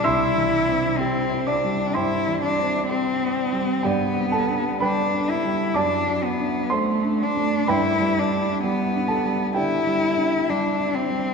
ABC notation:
X:1
M:4/4
L:1/8
Q:1/4=63
K:C
V:1 name="Cello"
E2 C D E D C2 | B,2 D E D B, A, D | E D B,2 E2 D C |]
V:2 name="Grand piano"
[ec'e']3 [dd'] [cgc']3 z | [Gdg] [Aa] [Bgb]2 [dad']2 [cc']2 | [Bgb]3 [Aa] [Gdg]3 z |]
V:3 name="Grand piano" clef=bass
(3C,, E, C (3G C G, (3G,, E, C (3G C G, | (3G,, G, D (3G, D G, (3^F,, ^F, D (3A D A, | (3G,, G, D (3G, D G, (3D, G, D (3G, D G, |]